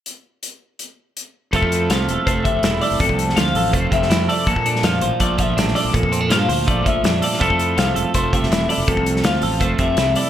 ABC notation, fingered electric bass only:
X:1
M:4/4
L:1/16
Q:1/4=164
K:F
V:1 name="Fingered electric bass" clef=bass
z16 | F,,, F,,3 C,,2 E,,, z F,,,2 z F,,, E,,,2 z F,,, | E,,, C,,3 D,,2 A,,,2 F,,,2 F,,,2 F,,2 z2 | B,,, B,,3 F,,2 A,,, z B,,,2 z B,,, A,,,2 z B,,, |
A,,, F,,3 G,,2 D,,2 B,,,2 B,,,2 F,,2 z2 | F,,, F,,3 C,,2 E,,, z F,,,2 z F,,, E,,,2 z F,,, | E,,, C,,3 D,,2 A,,,2 F,,,2 F,,,2 C,,2 z2 |]